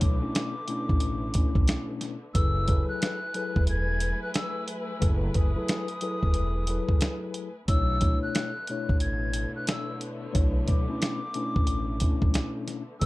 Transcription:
Already playing: tine electric piano B2 A3 D4 E4 C#5, string section D3 A3 B3
0.01 upright bass B1, flute D6, kick, closed hi-hat
0.21 tine electric piano B2 A3 C#4 D4 E4
0.35 snare, closed hi-hat
0.68 tine electric piano B2 A3 C#4 D4 E4, closed hi-hat
0.89 upright bass A1, kick
1.00 closed hi-hat
1.34 tine electric piano B2 A3 C#4 D4 E4, kick, closed hi-hat
1.55 upright bass B1, kick
1.68 snare, closed hi-hat
2.01 snare, closed hi-hat
2.34 upright bass F#1, tine electric piano F#3 E4 G#4 A4 B4, string section F#3 A3 E4 B4 G#5, flute E6, kick, closed hi-hat
2.68 tine electric piano F#3 E4 G#4 A4 B4, kick, closed hi-hat
2.89 flute F#6
3.02 snare, closed hi-hat
3.34 tine electric piano F#3 E4 G#4 A4 B4, closed hi-hat
3.56 upright bass E1, kick
3.67 flute G#6, closed hi-hat
4.00 closed hi-hat
4.23 flute F#6
4.34 flute E6, snare, closed hi-hat
4.68 closed hi-hat
5.00 upright bass F#1, tine electric piano F#3 E4 G#4 A4 B4, kick, closed hi-hat
5.34 upright bass F#1, flute D#6, kick, closed hi-hat
5.56 tine electric piano F#3 E4 G#4 A4 B4
5.68 snare, closed hi-hat
5.88 closed hi-hat
6.01 tine electric piano F#3 E4 G#4 A4 B4, closed hi-hat
6.23 upright bass E1, kick
6.34 closed hi-hat
6.67 tine electric piano F#3 E4 G#4 A4 B4, closed hi-hat
6.89 upright bass F#1, kick
7.01 snare, closed hi-hat
7.34 closed hi-hat
7.66 upright bass B1, tine electric piano B2 A3 D4 E4 C#5, string section D3 A3 B3, flute E6, kick, closed hi-hat
8.01 tine electric piano B2 A3 D4 E4 C#5, kick, closed hi-hat
8.23 flute F#6
8.35 snare, closed hi-hat
8.67 tine electric piano B2 A3 D4 E4 C#5, closed hi-hat
8.89 upright bass A1, kick
9.00 flute G#6, closed hi-hat
9.33 closed hi-hat
9.56 flute F#6
9.67 flute E6, snare, closed hi-hat
10.01 closed hi-hat
10.32 upright bass B1, tine electric piano B2 A3 D4 E4 C#5, kick, closed hi-hat
10.68 upright bass B1, flute D6, kick, closed hi-hat
10.88 tine electric piano B2 A3 C#4 D4 E4
11.02 snare, closed hi-hat
11.34 tine electric piano B2 A3 C#4 D4 E4, closed hi-hat
11.56 upright bass A1, kick
11.67 closed hi-hat
12.00 tine electric piano B2 A3 C#4 D4 E4, kick, closed hi-hat
12.22 upright bass B1, kick
12.34 snare, closed hi-hat
12.68 snare, closed hi-hat
13.00 upright bass F#1, tine electric piano F#3 E4 G#4 A4 B4, string section F#3 A3 E4 B4 G#5, flute E6, kick, closed hi-hat

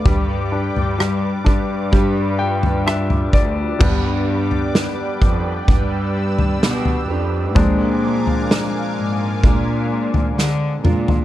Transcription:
Already playing: steel-string acoustic guitar D3, nylon-string guitar B4, analog synth pad D5 D6
0.05 cello section G2, steel-string acoustic guitar G3 D4 G4 B4, grand piano G3, analog synth pad B4 G5, kick, floor tom
0.52 grand piano D4
0.75 cello section G2, floor tom
0.98 grand piano G3, cross-stick
1.45 cello section G2, grand piano D4, steel-string acoustic guitar G4 B4, kick
1.49 steel-string acoustic guitar D4
1.92 steel-string acoustic guitar G3 D4 G4, grand piano G3, analog synth pad F4, kick
1.96 steel-string acoustic guitar B4
2.39 grand piano G5
2.63 floor tom
2.86 grand piano D4 E5, cross-stick
3.10 floor tom
3.33 cello section D2, grand piano D5, kick
3.79 cello section G2, grand piano G3 B3 D4, steel-string acoustic guitar G3 D4 G4, analog synth pad B4 D5 G5 D6, kick, floor tom, crash
3.84 steel-string acoustic guitar B4
4.51 floor tom
4.75 snare
5.22 cello section F2, kick
5.68 cello section G2, steel-string acoustic guitar G3 D4 G4 B4, analog synth pad E6, kick, floor tom
6.38 floor tom
6.63 cello section B2, snare
6.85 floor tom
7.08 cello section F2, steel-string acoustic guitar D4 G4 B4
7.55 steel-string acoustic guitar A#2 F3 G#3 D4 F4, cello section A#2, grand piano G#3 C4 D4, analog synth pad A#4 F5 G#5 D6, kick, floor tom
7.60 steel-string acoustic guitar A#4
8.27 floor tom
8.51 snare
8.97 cello section G#2
9.42 cello section A#2, steel-string acoustic guitar G#3 D4 F4 A#4, kick, floor tom
10.14 floor tom
10.36 cello section D3, snare
10.84 cello section A#2, steel-string acoustic guitar G#3 D4 F4 A#4, mid tom
11.08 floor tom

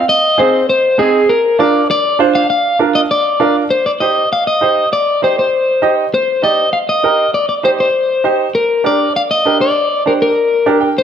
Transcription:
0.09 clean electric guitar D#5
0.38 upright piano C4 D#4 G#4, clean electric guitar C5
0.69 clean electric guitar C5
0.98 upright piano C4 D#4 G#4, clean electric guitar G#4
1.29 clean electric guitar A#4
1.59 upright piano D4 F4 A#4, clean electric guitar D5
1.91 clean electric guitar D5
2.19 upright piano D4 F4 C5
2.35 clean electric guitar F5
2.50 clean electric guitar F5
2.79 upright piano D4 F4 A#4
2.95 clean electric guitar D#5
3.11 clean electric guitar D5
3.40 upright piano D4 F4 A#4
3.70 clean electric guitar C5
3.86 clean electric guitar D5
4.00 upright piano D#4 G4 C5, clean electric guitar D#5
4.33 clean electric guitar F5
4.47 clean electric guitar D#5
4.61 upright piano D#4 G4 C5
4.93 clean electric guitar D5
5.22 upright piano D#4 G4 C5, clean electric guitar C5
5.39 clean electric guitar C5
5.82 upright piano D#4 G4 D#5
6.14 clean electric guitar C5
6.42 upright piano D#4 G4 D5, clean electric guitar D#5
6.73 clean electric guitar F5
6.89 clean electric guitar D#5
7.03 upright piano D#4 G4 A#4
7.34 clean electric guitar D5
7.49 clean electric guitar D5
7.63 upright piano D#4 G4 C5, clean electric guitar C5
7.80 clean electric guitar C5
8.24 upright piano D#4 G4 C5
8.55 clean electric guitar A#4
8.84 upright piano D4 G4 A#4, clean electric guitar D5
9.16 clean electric guitar F5
9.31 clean electric guitar D#5
9.45 upright piano D4 G4 A#4
9.61 clean electric guitar D5
10.06 upright piano D4 G4 C5, clean electric guitar A#4
10.22 clean electric guitar A#4
10.66 upright piano D4 G4 A#4 D5
10.81 upright piano G5
10.98 clean electric guitar C5

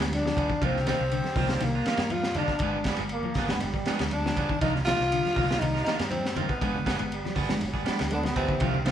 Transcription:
Already playing: reed electric piano F3 G#3 B3 D4
0.00 fingered electric bass D2, clean electric guitar G3, snare, ride bell
0.12 trombone D4, snare, ride bell, high conga
0.17 tenor saxophone D4
0.26 clean electric guitar F3, snare
0.37 fingered electric bass D2, clean electric guitar F3 B3 G#4, muted clean electric guitar stroke, kick, ride bell, high conga, low conga
0.49 clean electric guitar D#3, kick
0.61 fingered electric bass C2, clean electric guitar D#3 F3 A#3 D4 F4, reed electric piano D#3 F3 A#3 D4, trombone C4, tenor saxophone C4, kick, ride bell
0.74 snare, low conga
0.87 clean electric guitar D#3 A#3 D4 F4, trombone C4, tenor saxophone C4, snare, ride bell, high conga
1.00 fingered electric bass C2
1.11 clean electric guitar D3, ride bell, high conga
1.24 snare, high conga
1.35 fingered electric bass C2, clean electric guitar D#3 F3 A#3 D4 F4, reed electric piano A#3 D4, kick, open hi-hat, low conga
1.48 reed electric piano D#3 F3 A#3 D4, clean electric guitar A#3 D4 F4, snare, high conga
1.60 fingered electric bass C2, clean electric guitar D#3, trombone A#3, tenor saxophone A#3, snare, ride bell, high conga
1.75 clean electric guitar A#3 D4 F4
1.86 clean electric guitar D#3 A#3 D4 F4, reed electric piano D#3 F3 A#3 D4, muted fingered electric bass stroke, snare, ride bell, high conga
1.97 fingered electric bass G2, snare, ride bell
2.10 clean electric guitar F3, tenor saxophone F4, trombone F4, ride bell, high conga
2.23 snare
2.34 fingered electric bass G2, clean electric guitar D#3 A#3, tenor saxophone D4, trombone D4, snare, ride bell, low conga
2.38 clean electric guitar D4 F4
2.48 kick, snare
2.59 fingered electric bass G1, reed electric piano F3 G#3 B3 D4, clean electric guitar F3 G#3 B3, kick, ride bell
2.63 clean electric guitar D4 G#4
2.76 clean electric guitar G3
2.84 clean electric guitar F3 B3, kick, snare, ride bell, high conga
2.88 trombone section G3, clean electric guitar D4 G#4
2.96 fingered electric bass G1, clean electric guitar G#3, snare, ride bell
3.09 trombone section A#3, ride bell, high conga
3.23 clean electric guitar F3, high conga
3.34 fingered electric bass G1, clean electric guitar F3 B3 D4, reed electric piano B3 D4, kick, snare, open hi-hat, low conga
3.38 clean electric guitar G#4
3.49 reed electric piano F3 G#3 B3 D4, clean electric guitar G#3, trombone section B3, snare, high conga
3.60 fingered electric bass G1, trombone section G3, snare, ride bell, high conga
3.74 clean electric guitar G3, kick
3.86 clean electric guitar F3 B3 D4 G#4, reed electric piano F3 G#3 B3 D4, muted fingered electric bass stroke, snare, ride bell, high conga
3.99 fingered electric bass D2, clean electric guitar G3, snare, ride bell
4.11 tenor saxophone D4, trombone D4, ride bell, high conga
4.26 clean electric guitar F3, snare
4.36 fingered electric bass G2, clean electric guitar F3 B3 D4 G#4, kick, ride bell, low conga
4.49 clean electric guitar D#3, kick
4.61 fingered electric bass C2, clean electric guitar D#3 F3 A#3 D4 F4, reed electric piano D#3 F3 A#3 D4, tenor saxophone D#4, trombone D#4, kick, ride bell
4.76 snare, low conga
4.85 clean electric guitar D#3 F3 A#3 D4 F4, tenor saxophone F4, trombone F4, snare, ride bell, high conga
5.00 fingered electric bass C2, snare
5.12 clean electric guitar D3, ride bell, high conga
5.25 snare, high conga
5.36 fingered electric bass C2, clean electric guitar D#3 F3 A#3 D4 F4, reed electric piano A#3 D4, kick, open hi-hat, low conga
5.49 reed electric piano D#3 F3 A#3 D4, clean electric guitar A#3 D4 F4, snare, high conga
5.59 fingered electric bass C2, trombone D#4, tenor saxophone D#4, ride bell, high conga
5.63 clean electric guitar D#3
5.74 clean electric guitar A#3 D4 F4, snare
5.84 reed electric piano D#3 F3 A#3 D4, clean electric guitar A#3 D4 F4, tenor saxophone D#4, trombone D#4, snare, ride bell, high conga
5.88 clean electric guitar G3
5.99 fingered electric bass G2, snare, ride bell
6.09 clean electric guitar F3, trombone C4, tenor saxophone C4, ride bell, high conga
6.26 snare
6.36 fingered electric bass G2, clean electric guitar D#3 A#3 F4, ride bell, high conga, low conga
6.48 tenor saxophone B3, trombone B3, kick
6.61 fingered electric bass G1, clean electric guitar F3 G#3 B3 D4 G#4, reed electric piano F3 G#3 B3 D4, kick, ride bell, high conga
6.74 clean electric guitar G3, low conga
6.85 clean electric guitar F3 B3 D4 G#4, kick, snare, ride bell, high conga
6.99 fingered electric bass G1, clean electric guitar G#3, ride bell
7.12 trombone section G3, ride bell, high conga
7.25 clean electric guitar F3, snare, high conga
7.35 fingered electric bass G1, clean electric guitar F3 B3 D4 G#4, reed electric piano B3 D4, kick, snare, open hi-hat, low conga
7.49 reed electric piano F3 G#3 B3 D4, clean electric guitar G#3, snare, high conga
7.61 fingered electric bass G1, trombone section G3, snare, ride bell, high conga
7.73 clean electric guitar G3 B3 D4 G#4, kick
7.85 clean electric guitar F3 B3 D4, reed electric piano F3 G#3 B3, muted fingered electric bass stroke, snare, ride bell, high conga
7.89 reed electric piano D4
7.99 fingered electric bass D2, clean electric guitar G3, snare, ride bell
8.10 trombone D3, trombone section B3, tenor saxophone D4, ride bell, high conga
8.23 clean electric guitar F3, snare, high conga
8.35 fingered electric bass D2, trombone C3, clean electric guitar F3 B3 D4 G#4, tenor saxophone C4, kick, ride bell
8.48 clean electric guitar D#3, kick, low conga
8.60 fingered electric bass C2, clean electric guitar D#3 F3 A#3 D4 F4, reed electric piano D#3 F3 A#3 D4, kick, ride bell, high conga
8.74 low conga
8.85 trombone C3, clean electric guitar D#3 A#3 D4 F4, tenor saxophone C4, snare, ride bell, high conga

